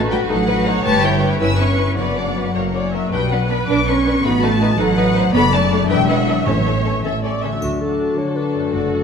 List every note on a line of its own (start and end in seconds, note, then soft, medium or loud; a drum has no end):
0.00 0.23 A1 medium
0.00 0.86 A2 medium
0.00 0.80 F#3 soft
0.00 0.65 B3 medium
0.00 0.12 D#4 medium
0.00 0.30 F#4 medium
0.00 0.12 A4 medium
0.00 0.10 B4 soft
0.11 0.18 G3 medium
0.11 0.30 F#4 medium
0.11 0.47 B4 medium
0.11 0.30 B4 medium
0.11 0.19 G5 medium
0.29 0.78 A1 medium
0.29 0.84 F#3 medium
0.29 0.86 D#4 medium
0.29 0.48 D#4 medium
0.29 0.37 A4 medium
0.29 0.48 A4 medium
0.29 0.84 F#5 medium
0.48 0.66 F#4 medium
0.48 0.55 B4 medium
0.48 1.21 B4 medium
0.48 0.66 B4 medium
0.66 1.02 B3 medium
0.66 0.86 D#4 medium
0.66 0.86 A4 medium
0.66 1.39 C#5 medium
0.85 1.34 G1 medium
0.85 1.40 G2 medium
0.85 0.92 A3 medium
0.85 1.03 G4 medium
0.85 1.03 B4 medium
0.85 1.03 A5 loud
1.03 1.40 G3 medium
1.03 1.59 B3 soft
1.03 1.22 E4 medium
1.03 1.21 G4 medium
1.03 1.41 G5 medium
1.22 1.77 E4 soft
1.22 1.41 G4 medium
1.22 1.40 B4 medium
1.22 2.56 B4 soft
1.40 1.91 G1 medium
1.40 1.99 G2 medium
1.40 1.58 C#4 soft
1.40 1.48 E4 medium
1.40 1.96 B4 medium
1.40 1.58 B4 soft
1.40 1.59 E6 medium
1.59 2.15 B3 soft
1.59 1.96 C#4 medium
1.59 1.79 E4 soft
1.59 1.79 C#5 soft
1.59 1.97 C#6 medium
1.78 1.98 C#4 soft
1.78 1.99 E4 soft
1.78 1.97 B4 soft
1.78 1.99 C#5 soft
1.97 2.48 F#1 medium
1.97 2.54 F#2 soft
1.97 2.93 F#3 medium
1.97 2.15 B3 soft
1.97 2.15 B4 soft
1.97 2.50 D5 medium
1.97 2.91 F#5 medium
2.17 2.56 B3 soft
2.17 2.36 D4 soft
2.17 2.36 D5 soft
2.36 2.55 B3 soft
2.36 2.92 F#4 soft
2.36 2.55 B4 soft
2.36 2.56 D5 soft
2.55 3.05 F#1 medium
2.55 3.13 F#2 soft
2.55 2.73 A#3 soft
2.55 2.73 A#4 soft
2.55 2.62 C#5 soft
2.74 3.14 A#3 soft
2.74 2.93 C#4 soft
2.74 2.93 C#5 soft
2.74 2.93 D5 soft
2.93 3.12 A#3 soft
2.93 5.91 F#4 soft
2.93 3.12 A#4 soft
2.93 3.14 C#5 soft
2.93 3.12 E5 medium
3.12 3.62 B1 medium
3.12 4.25 B2 soft
3.12 3.29 G3 medium
3.12 3.20 D4 medium
3.12 4.20 B4 medium
3.12 3.20 B4 medium
3.12 3.29 G5 medium
3.30 3.49 F#3 medium
3.30 4.04 B3 soft
3.30 3.39 D4 soft
3.30 3.39 B4 soft
3.30 3.49 F#5 medium
3.49 3.57 B3 medium
3.49 3.57 D4 soft
3.49 3.57 B4 soft
3.49 3.85 D5 soft
3.49 3.68 B5 medium
3.68 4.17 B1 medium
3.68 3.86 D4 medium
3.68 3.77 D4 soft
3.68 4.77 B4 soft
3.68 3.76 B4 soft
3.68 3.86 D6 medium
3.86 4.23 C#4 medium
3.86 3.95 D4 soft
3.86 3.95 B4 medium
3.86 4.25 D5 soft
3.86 4.24 C#6 medium
4.05 4.41 B3 medium
4.05 4.13 D4 soft
4.05 4.14 B4 medium
4.23 4.72 A1 medium
4.23 5.35 A2 medium
4.23 4.42 B3 medium
4.23 4.32 D#4 medium
4.23 4.79 F#4 medium
4.23 4.32 B4 medium
4.23 4.42 B5 medium
4.42 4.78 A3 medium
4.42 5.15 B3 medium
4.42 4.50 D#4 medium
4.42 4.50 B4 medium
4.42 4.79 A5 medium
4.61 4.68 D#4 medium
4.61 4.68 B4 medium
4.61 4.96 D#5 medium
4.79 5.27 A1 medium
4.79 5.32 F#3 medium
4.79 4.86 D#4 medium
4.79 4.97 A4 medium
4.79 5.35 B4 medium
4.79 4.86 B4 medium
4.79 5.34 F#5 medium
4.97 5.05 D#4 medium
4.97 5.15 B4 medium
4.97 5.05 B4 medium
4.97 5.35 D#5 medium
5.15 5.35 B3 medium
5.15 5.23 D#4 medium
5.15 5.23 B4 medium
5.15 5.34 C5 medium
5.33 5.83 F#1 medium
5.33 5.91 F#2 medium
5.33 5.41 B3 loud
5.33 5.42 D4 medium
5.33 5.42 A4 medium
5.33 5.88 D5 medium
5.33 5.52 B5 loud
5.52 5.88 A3 medium
5.52 5.91 A3 medium
5.52 5.60 D4 medium
5.52 5.60 A4 medium
5.52 5.89 A5 medium
5.71 6.48 D4 medium
5.71 5.79 D4 medium
5.71 5.79 A4 medium
5.71 6.27 D5 medium
5.89 6.39 E1 medium
5.89 6.48 E2 medium
5.89 6.08 G3 medium
5.89 5.98 D4 medium
5.89 5.98 B4 medium
5.89 6.45 E5 medium
5.89 6.08 G5 loud
6.08 6.46 F#3 medium
6.08 6.48 B3 soft
6.08 6.17 D4 medium
6.08 6.16 B4 soft
6.08 6.46 F#5 medium
6.27 6.36 D4 medium
6.27 7.63 E4 soft
6.27 6.36 B4 medium
6.27 6.48 D5 soft
6.46 6.97 A1 medium
6.46 7.00 A2 medium
6.46 7.63 A2 medium
6.46 7.04 E3 medium
6.46 6.54 C#4 medium
6.46 6.55 A4 medium
6.46 7.00 C#5 medium
6.46 7.03 E5 medium
6.66 7.42 A3 soft
6.66 6.74 C#4 soft
6.66 6.74 A4 soft
6.85 6.93 C#4 soft
6.85 6.93 A4 soft
6.85 7.22 C#5 soft
7.04 7.55 A1 medium
7.04 7.12 C#4 soft
7.04 9.04 A4 soft
7.04 7.12 A4 soft
7.04 7.22 E5 medium
7.23 7.32 C#4 soft
7.23 7.31 A4 soft
7.23 7.63 C#5 soft
7.23 7.42 D5 medium
7.43 8.66 D3 soft
7.43 7.47 A3 soft
7.43 7.51 C#4 soft
7.43 7.51 A4 soft
7.43 7.62 E5 medium
7.48 8.58 A3 soft
7.53 8.63 F#4 soft
7.57 7.96 D2 soft
7.57 8.08 D3 soft
7.57 8.67 D5 soft
7.62 8.70 F#3 soft
7.62 9.04 D4 soft
7.62 7.79 F#4 medium
7.62 triangle soft
7.80 8.35 D4 soft
7.80 8.35 F#4 soft
7.80 8.19 A4 soft
7.80 8.35 A5 soft
8.17 8.64 D3 soft
8.17 8.70 A4 soft
8.17 8.38 C#5 medium
8.36 8.72 D4 soft
8.36 8.72 F#4 soft
8.36 8.74 B4 soft
8.36 8.72 A5 soft
8.55 9.04 F#2 soft
8.60 9.04 A3 soft
8.64 9.04 F#4 soft
8.68 9.04 D5 soft
8.73 9.04 F#1 soft
8.73 9.04 F#2 soft
8.73 9.04 A3 soft
8.73 8.90 D4 soft
8.73 8.90 F#4 soft
8.73 9.04 F#4 soft
8.73 9.04 A4 medium
8.73 8.92 A5 soft
8.91 9.04 D4 soft
8.91 9.04 F#4 soft
8.91 9.04 A5 soft